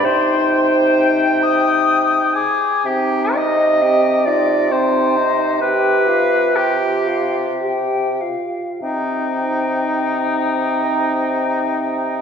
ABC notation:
X:1
M:3/4
L:1/8
Q:1/4=61
K:Cm
V:1 name="Flute"
c'2 g e'2 d' | g e g e g e | g f g f g f | g6 |]
V:2 name="Oboe"
g4- g A | G e2 d c2 | =B2 G2 z2 | E6 |]
V:3 name="Clarinet"
c4 z2 | E2 G F E2 | G2 F2 G z | E6 |]
V:4 name="French horn"
E4- E z | C E C E C E | G F G F G F | C6 |]
V:5 name="Bassoon" clef=bass
C,4- C, z | C,6- | C,4- C, z | C,6 |]